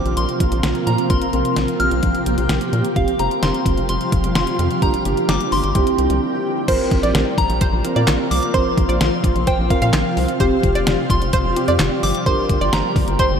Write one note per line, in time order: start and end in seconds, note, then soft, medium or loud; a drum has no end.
0.00 2.93 C3 medium
0.00 2.93 F3 medium
0.00 2.92 A#3 medium
0.00 1.08 F4 medium
0.00 0.14 D6 medium
0.05 0.15 A#1 loud
0.05 closed hi-hat soft
0.17 0.26 A#1 loud
0.17 0.89 C6 medium
0.17 closed hi-hat medium
0.29 closed hi-hat soft
0.40 0.50 A#1 medium
0.40 kick loud
0.40 closed hi-hat medium
0.52 0.61 A#1 loud
0.52 closed hi-hat medium
0.63 0.73 A#1 loud
0.63 snare loud
0.63 closed hi-hat medium
0.75 closed hi-hat soft
0.87 0.96 A#2 medium
0.87 1.11 A#5 medium
0.87 closed hi-hat medium
0.98 closed hi-hat soft
1.10 1.19 A#1 loud
1.10 1.24 C4 medium
1.10 1.24 F4 medium
1.10 2.94 G4 medium
1.10 1.24 A#4 medium
1.10 1.82 C6 medium
1.10 kick loud
1.10 closed hi-hat medium
1.22 closed hi-hat medium
1.33 1.43 A#1 loud
1.33 1.88 C4 medium
1.33 1.88 F4 medium
1.33 1.88 A#4 medium
1.33 closed hi-hat medium
1.45 closed hi-hat medium
1.56 1.66 A#1 loud
1.56 snare loud
1.56 closed hi-hat medium
1.68 closed hi-hat medium
1.80 1.89 A#1 loud
1.80 2.69 F6 loud
1.80 closed hi-hat medium
1.91 2.01 A#1 loud
1.91 closed hi-hat soft
2.03 2.12 A#1 loud
2.03 kick medium
2.03 closed hi-hat medium
2.15 closed hi-hat soft
2.26 2.36 A#1 medium
2.26 closed hi-hat medium
2.38 2.47 A#1 medium
2.38 closed hi-hat medium
2.49 2.59 A#1 loud
2.49 snare loud
2.49 closed hi-hat medium
2.61 closed hi-hat medium
2.73 2.82 A#2 loud
2.73 closed hi-hat medium
2.85 closed hi-hat medium
2.96 3.05 F1 loud
2.96 4.80 C3 medium
2.96 4.80 F3 medium
2.96 5.72 G3 medium
2.96 3.10 C4 medium
2.96 3.10 F4 medium
2.96 4.80 F4 medium
2.96 3.10 G4 medium
2.96 3.20 F5 medium
2.96 kick loud
2.96 closed hi-hat medium
3.08 closed hi-hat medium
3.19 3.29 F1 medium
3.19 3.74 C4 medium
3.19 3.74 F4 medium
3.19 3.74 G4 medium
3.19 3.43 A#5 medium
3.19 closed hi-hat medium
3.31 closed hi-hat medium
3.43 3.52 F1 loud
3.43 3.88 C6 medium
3.43 snare loud
3.43 closed hi-hat medium
3.54 closed hi-hat medium
3.66 3.75 F1 loud
3.66 kick loud
3.66 closed hi-hat medium
3.78 3.87 F1 medium
3.78 closed hi-hat soft
3.89 3.98 F1 loud
3.89 4.35 C6 medium
3.89 closed hi-hat medium
4.01 closed hi-hat soft
4.12 4.22 F1 medium
4.12 kick loud
4.12 closed hi-hat medium
4.24 4.33 F1 loud
4.24 closed hi-hat medium
4.35 4.45 F1 loud
4.35 4.84 C6 loud
4.35 snare loud
4.35 closed hi-hat medium
4.47 closed hi-hat medium
4.59 4.68 F2 loud
4.59 closed hi-hat medium
4.71 closed hi-hat soft
4.82 4.91 G1 loud
4.82 5.74 D3 medium
4.82 5.74 A#3 medium
4.82 4.96 A#3 medium
4.82 4.96 D4 medium
4.82 5.74 G4 medium
4.82 4.96 G4 medium
4.82 5.30 A#5 loud
4.82 kick loud
4.82 closed hi-hat medium
4.94 closed hi-hat medium
5.05 5.15 G1 loud
5.05 5.60 A#3 medium
5.05 5.60 D4 medium
5.05 5.60 G4 medium
5.05 closed hi-hat medium
5.17 closed hi-hat medium
5.29 5.38 G1 loud
5.29 5.53 D6 loud
5.29 snare loud
5.29 closed hi-hat medium
5.41 closed hi-hat medium
5.52 5.61 G1 loud
5.52 6.41 C6 loud
5.52 open hi-hat medium
5.64 5.73 G1 loud
5.64 closed hi-hat soft
5.75 5.84 C2 loud
5.75 6.67 E3 medium
5.75 6.67 G3 medium
5.75 6.67 C4 medium
5.75 6.50 C4 medium
5.75 6.50 E4 medium
5.75 6.50 G4 medium
5.75 6.67 G4 medium
5.75 kick medium
5.75 closed hi-hat medium
5.87 closed hi-hat soft
5.98 6.08 C2 loud
5.98 closed hi-hat medium
6.10 6.19 C2 loud
6.10 closed hi-hat medium
6.68 6.77 A#1 loud
6.68 10.37 C3 medium
6.68 12.22 F3 medium
6.68 8.52 A#3 medium
6.68 7.23 C4 medium
6.68 7.23 F4 medium
6.68 12.22 F4 medium
6.68 7.23 A#4 loud
6.68 6.82 C5 loud
6.68 kick loud
6.68 closed hi-hat medium
6.68 crash loud
6.91 7.01 A#1 medium
6.91 kick medium
6.91 closed hi-hat medium
7.03 7.12 A#1 loud
7.03 7.36 D5 medium
7.03 closed hi-hat medium
7.15 7.24 A#1 loud
7.15 snare loud
7.15 closed hi-hat medium
7.38 7.47 A#1 loud
7.38 8.34 A#5 loud
7.38 kick loud
7.38 closed hi-hat medium
7.50 7.59 A#1 loud
7.50 closed hi-hat soft
7.61 7.68 C5 medium
7.61 kick loud
7.61 closed hi-hat medium
7.73 7.82 A#1 loud
7.85 8.25 C4 medium
7.85 8.25 F4 medium
7.85 8.25 A#4 medium
7.85 closed hi-hat medium
7.96 8.05 A#2 loud
7.96 8.10 D5 medium
7.96 closed hi-hat medium
8.07 8.17 A#1 medium
8.07 snare loud
8.07 clap loud
8.07 closed hi-hat medium
8.31 8.40 C2 medium
8.31 8.55 D6 loud
8.31 open hi-hat medium
8.43 closed hi-hat medium
8.54 8.63 A#1 loud
8.54 10.38 C4 medium
8.54 9.09 C4 medium
8.54 9.09 F4 medium
8.54 9.09 A#4 medium
8.54 8.68 C5 loud
8.54 9.00 C6 loud
8.54 kick loud
8.54 closed hi-hat medium
8.78 8.87 A#1 loud
8.78 kick loud
8.78 closed hi-hat medium
8.89 8.98 A#1 loud
8.89 9.22 D5 medium
8.89 closed hi-hat medium
9.01 9.10 A#1 loud
9.01 9.44 C6 loud
9.01 snare loud
9.01 closed hi-hat medium
9.24 9.33 A#1 loud
9.24 kick loud
9.24 closed hi-hat medium
9.36 9.45 A#1 medium
9.36 closed hi-hat soft
9.47 9.54 C5 medium
9.47 9.58 G5 medium
9.47 kick loud
9.47 closed hi-hat medium
9.59 9.68 A#1 medium
9.70 10.11 C4 medium
9.70 10.11 F4 medium
9.70 10.11 A#4 medium
9.70 10.14 F5 medium
9.70 kick loud
9.70 closed hi-hat medium
9.82 9.91 A#2 loud
9.82 9.96 F5 medium
9.82 closed hi-hat medium
9.93 10.03 A#1 medium
9.93 snare loud
9.93 clap loud
9.93 closed hi-hat medium
10.17 10.26 C2 loud
10.17 open hi-hat medium
10.28 closed hi-hat medium
10.40 10.49 F1 loud
10.40 12.25 C3 medium
10.40 13.40 G3 medium
10.40 10.95 C4 medium
10.40 10.95 F4 medium
10.40 10.95 G4 loud
10.40 10.54 C5 loud
10.40 kick loud
10.40 closed hi-hat medium
10.63 10.73 F1 loud
10.63 kick medium
10.63 closed hi-hat medium
10.75 10.84 F1 loud
10.75 11.08 D5 medium
10.75 closed hi-hat medium
10.87 10.96 F1 loud
10.87 snare loud
10.87 closed hi-hat medium
11.10 11.19 F1 loud
11.10 12.06 C6 loud
11.10 kick loud
11.10 closed hi-hat medium
11.22 11.31 F1 loud
11.22 closed hi-hat soft
11.33 11.40 C5 medium
11.33 kick loud
11.33 closed hi-hat medium
11.45 11.54 F1 loud
11.56 11.97 C4 medium
11.56 11.97 F4 medium
11.56 11.97 G4 medium
11.56 closed hi-hat medium
11.68 11.78 F2 medium
11.68 11.82 D5 medium
11.68 closed hi-hat medium
11.79 11.89 F1 loud
11.79 snare loud
11.79 clap loud
11.79 closed hi-hat medium
12.03 12.12 G1 loud
12.03 12.27 D6 loud
12.03 open hi-hat medium
12.15 closed hi-hat medium
12.26 12.36 G1 loud
12.26 13.40 D3 medium
12.26 13.40 A#3 medium
12.26 12.81 D4 medium
12.26 12.81 G4 medium
12.26 13.40 G4 medium
12.26 12.81 A#4 medium
12.26 12.40 C5 loud
12.26 12.74 C6 loud
12.26 kick loud
12.26 closed hi-hat medium
12.49 12.59 G1 loud
12.49 kick medium
12.49 closed hi-hat medium
12.61 12.70 G1 loud
12.61 12.94 D5 medium
12.61 closed hi-hat medium
12.73 12.82 G1 loud
12.73 13.16 A#5 medium
12.73 snare loud
12.73 closed hi-hat medium
12.96 13.05 G1 loud
12.96 kick loud
12.96 open hi-hat medium
13.08 13.17 G1 loud
13.08 closed hi-hat soft
13.19 13.26 C5 medium
13.19 13.30 C6 medium
13.19 kick medium
13.19 closed hi-hat medium
13.31 13.40 G1 medium